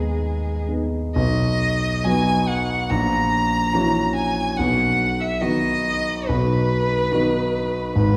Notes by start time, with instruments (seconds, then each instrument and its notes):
Already playing: grand piano D#2 B3 D#4 G#4, cello G#3, violin G#4
0.68 grand piano B3 D#4 G#4
1.15 grand piano B1 B2, violin D#5
2.04 cello F#3, grand piano B3 D#4 F#4, violin G#5
2.48 violin F#5
2.90 grand piano A#1 A#2, violin A#5
3.74 cello E3, grand piano C#4 E4 F#4
4.15 violin G#5
4.57 grand piano B1 B2, violin F#5
5.20 violin E5
5.41 cello D#3, grand piano B3 D#4 F#4, violin D#5
6.28 grand piano B1 B2, violin B4
7.12 cello D#3, grand piano B3 D#4 F#4
7.95 grand piano G#1 G#2, violin B4